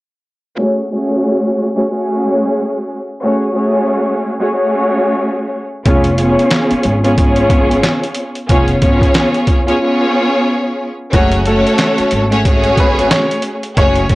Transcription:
0.57 0.88 A3 medium
0.57 0.88 C#4 medium
0.57 0.89 F#4 medium
0.57 0.89 G#4 medium
0.57 0.89 C#5 loud
0.91 1.69 A3 loud
0.91 1.69 C#4 medium
0.91 1.69 F#4 medium
0.91 1.69 G#4 medium
0.91 1.69 C#5 loud
1.75 1.89 A3 medium
1.75 1.89 C#4 medium
1.75 1.89 F#4 medium
1.75 1.90 G#4 medium
1.75 1.90 C#5 loud
1.90 2.97 A3 loud
1.90 2.97 C#4 medium
1.90 2.98 F#4 medium
1.90 2.98 G#4 loud
1.90 2.98 C#5 loud
3.22 3.53 A3 medium
3.22 3.53 C#4 medium
3.22 3.53 F#4 medium
3.22 3.53 G#4 medium
3.22 3.54 C#5 loud
3.54 4.32 A3 loud
3.54 4.32 C#4 medium
3.54 4.32 F#4 medium
3.54 4.33 G#4 medium
3.54 4.33 C#5 loud
4.39 4.53 A3 medium
4.39 4.53 C#4 medium
4.39 4.53 F#4 medium
4.39 4.54 G#4 medium
4.39 4.54 C#5 loud
4.54 5.61 A3 loud
4.54 5.61 C#4 medium
4.54 5.61 F#4 medium
4.54 5.62 G#4 medium
4.54 5.62 C#5 loud
5.85 6.34 F1 medium
5.85 6.16 B3 loud
5.85 6.16 C#4 medium
5.85 6.16 F4 medium
5.85 6.17 G#4 medium
5.85 6.17 C#5 loud
5.85 kick loud
5.85 closed hi-hat medium
6.04 closed hi-hat medium
6.18 6.96 B3 loud
6.18 6.96 C#4 loud
6.18 6.96 F4 medium
6.18 6.96 G#4 medium
6.18 6.96 C#5 loud
6.18 closed hi-hat medium
6.39 closed hi-hat medium
6.51 snare loud
6.51 clap medium
6.51 closed hi-hat medium
6.71 muted upright bass stroke soft
6.71 closed hi-hat medium
6.83 7.80 G#1 medium
6.83 closed hi-hat medium
7.03 7.16 B3 medium
7.03 7.16 C#4 medium
7.03 7.17 F4 medium
7.03 7.17 G#4 medium
7.03 7.17 C#5 medium
7.03 closed hi-hat soft
7.17 8.25 B3 loud
7.17 8.25 C#4 medium
7.17 8.25 F4 medium
7.17 8.25 G#4 loud
7.17 8.25 C#5 loud
7.17 kick medium
7.17 closed hi-hat medium
7.36 closed hi-hat soft
7.50 kick medium
7.50 closed hi-hat medium
7.71 closed hi-hat medium
7.83 snare loud
7.83 clap medium
7.83 closed hi-hat loud
8.04 closed hi-hat medium
8.15 closed hi-hat medium
8.35 closed hi-hat soft
8.49 8.80 F1 loud
8.49 8.80 B3 medium
8.49 8.80 C#4 medium
8.49 8.80 F4 medium
8.49 8.80 G#4 medium
8.49 8.81 C#5 loud
8.49 kick loud
8.49 closed hi-hat medium
8.68 closed hi-hat medium
8.81 9.00 G#1 medium
8.81 9.59 B3 loud
8.81 9.60 C#4 medium
8.81 9.60 F4 medium
8.81 9.60 G#4 medium
8.81 9.60 C#5 loud
8.81 kick medium
8.81 closed hi-hat medium
9.01 kick medium
9.01 closed hi-hat medium
9.14 snare loud
9.14 clap medium
9.14 closed hi-hat medium
9.34 closed hi-hat medium
9.47 kick medium
9.47 closed hi-hat medium
9.67 9.79 B3 medium
9.67 9.80 C#4 medium
9.67 9.80 F4 medium
9.67 9.80 G#4 medium
9.67 9.81 C#5 loud
9.67 closed hi-hat soft
9.80 10.88 B3 loud
9.80 10.88 C#4 loud
9.80 10.89 F4 medium
9.80 10.89 G#4 medium
9.80 10.89 C#5 loud
11.12 11.62 F#1 loud
11.12 11.44 F#3 medium
11.12 11.43 A3 medium
11.12 11.44 C#4 medium
11.12 11.44 F#4 medium
11.12 11.43 F#4 loud
11.12 11.44 G#4 medium
11.12 11.44 C#5 loud
11.12 kick loud
11.12 closed hi-hat medium
11.32 closed hi-hat medium
11.46 12.24 A3 loud
11.46 11.96 A3 medium
11.46 12.24 C#4 medium
11.46 12.24 F#4 loud
11.46 11.96 A4 medium
11.46 12.24 A4 medium
11.46 12.24 C#5 loud
11.46 closed hi-hat medium
11.67 closed hi-hat medium
11.78 snare loud
11.78 clap medium
11.78 closed hi-hat medium
11.98 muted upright bass stroke soft
11.98 closed hi-hat medium
12.11 13.07 G#1 medium
12.11 closed hi-hat medium
12.30 12.44 A3 medium
12.30 12.44 C#4 medium
12.30 12.44 F#4 medium
12.30 12.45 G#4 medium
12.30 12.45 C#5 loud
12.30 closed hi-hat soft
12.45 13.52 A3 loud
12.45 13.52 C#4 loud
12.45 13.53 F#4 medium
12.45 13.53 G#4 loud
12.45 13.53 C#5 loud
12.45 kick loud
12.45 closed hi-hat medium
12.64 closed hi-hat medium
12.77 13.09 B3 medium
12.77 13.09 B4 medium
12.77 kick medium
12.77 closed hi-hat medium
12.99 closed hi-hat medium
13.11 13.41 C#4 medium
13.11 13.41 C#5 medium
13.11 snare loud
13.11 clap medium
13.11 closed hi-hat loud
13.31 closed hi-hat medium
13.42 closed hi-hat medium
13.63 closed hi-hat soft
13.77 14.07 F#1 loud
13.77 14.08 A3 medium
13.77 14.08 C#4 medium
13.77 14.15 C#4 medium
13.77 14.08 F#4 medium
13.77 14.08 G#4 medium
13.77 14.15 C#5 loud
13.77 14.08 C#5 loud
13.77 kick loud
13.77 closed hi-hat medium
13.96 closed hi-hat medium
14.09 14.15 G#1 loud
14.09 14.15 A3 loud
14.09 14.15 C#4 medium
14.09 14.15 F#4 medium
14.09 14.15 G#4 medium
14.09 14.15 C#5 loud
14.09 kick medium
14.09 closed hi-hat medium

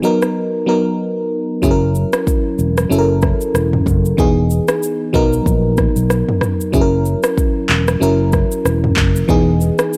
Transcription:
0.02 0.63 F#3 medium
0.02 0.64 B3 medium
0.02 0.64 D#4 medium
0.02 0.64 A#4 medium
0.02 shaker soft
0.22 cross-stick medium
0.22 shaker medium
0.66 1.57 F#3 medium
0.66 1.58 B3 medium
0.66 1.58 D#4 medium
0.66 1.58 A#4 medium
1.62 2.04 F#1 loud
1.62 2.83 F#3 medium
1.62 2.84 C#4 medium
1.62 2.84 E4 medium
1.62 1.71 G#4 medium
1.62 kick loud
1.62 shaker medium
1.71 2.88 A#4 medium
1.95 shaker soft
2.13 cross-stick loud
2.13 shaker medium
2.27 kick loud
2.27 shaker medium
2.59 2.84 E1 medium
2.59 shaker soft
2.78 cross-stick medium
2.78 shaker medium
2.90 3.31 F#1 loud
2.90 4.11 F#3 medium
2.90 4.11 C#4 medium
2.90 4.12 E4 medium
2.90 2.99 A4 medium
2.90 shaker medium
2.98 4.15 A#4 medium
3.22 kick medium
3.22 cross-stick medium
3.22 shaker medium
3.41 shaker medium
3.54 3.80 E1 medium
3.54 cross-stick medium
3.54 shaker medium
3.73 mid tom medium
3.86 4.12 F#1 medium
3.86 kick medium
3.86 mid tom medium
3.86 shaker medium
4.05 shaker medium
4.17 4.59 E1 loud
4.17 5.14 E3 medium
4.17 5.13 B3 medium
4.17 5.13 D#4 medium
4.17 5.15 G#4 medium
4.17 kick loud
4.17 shaker medium
4.50 shaker medium
4.68 cross-stick loud
4.68 shaker medium
4.83 shaker medium
5.13 5.40 B1 medium
5.13 6.34 F#3 medium
5.13 6.35 B3 medium
5.13 6.35 D#4 medium
5.13 6.35 A#4 loud
5.13 kick medium
5.13 shaker soft
5.33 shaker medium
5.46 5.87 A#1 medium
5.46 kick medium
5.46 shaker medium
5.77 kick medium
5.77 cross-stick medium
5.77 shaker medium
5.96 6.22 B1 medium
5.96 shaker medium
6.10 cross-stick medium
6.10 shaker medium
6.29 mid tom medium
6.41 cross-stick medium
6.41 mid tom medium
6.41 shaker medium
6.61 shaker medium
6.72 7.14 F#1 loud
6.72 7.94 F#3 medium
6.72 7.94 C#4 medium
6.72 7.95 E4 medium
6.72 6.82 G#4 medium
6.72 kick loud
6.72 shaker medium
6.81 7.98 A#4 medium
7.06 shaker medium
7.23 cross-stick loud
7.23 shaker medium
7.38 kick loud
7.38 shaker medium
7.69 7.95 E1 medium
7.69 clap medium
7.69 shaker soft
7.88 cross-stick loud
7.88 shaker medium
8.00 8.42 F#1 loud
8.00 9.21 F#3 medium
8.00 9.22 C#4 medium
8.00 9.22 E4 medium
8.00 9.23 A#4 medium
8.00 shaker medium
8.33 kick medium
8.33 cross-stick medium
8.33 shaker medium
8.52 shaker medium
8.65 8.91 E1 medium
8.65 cross-stick medium
8.65 shaker medium
8.84 mid tom loud
8.96 9.23 F#1 medium
8.96 kick loud
8.96 clap loud
8.96 mid tom medium
8.96 shaker medium
9.16 shaker medium
9.28 9.70 E1 loud
9.28 9.97 E3 medium
9.28 9.97 B3 medium
9.28 9.97 D#4 medium
9.28 9.97 G#4 medium
9.28 kick loud
9.28 shaker medium
9.61 shaker medium
9.79 cross-stick loud
9.79 shaker medium
9.93 shaker medium

